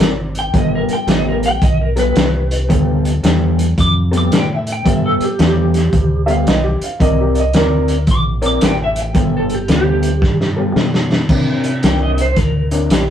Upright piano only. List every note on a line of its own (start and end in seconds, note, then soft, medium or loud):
6.26 6.31 E5 medium
6.31 6.47 F5 medium
6.47 6.64 D#5 medium
6.64 6.82 G4 medium
6.84 7.01 F5 medium
7.01 7.18 D#5 medium
7.21 7.37 G4 medium
7.34 7.39 D5 medium
7.39 7.55 D#5 medium
7.56 7.98 A#4 medium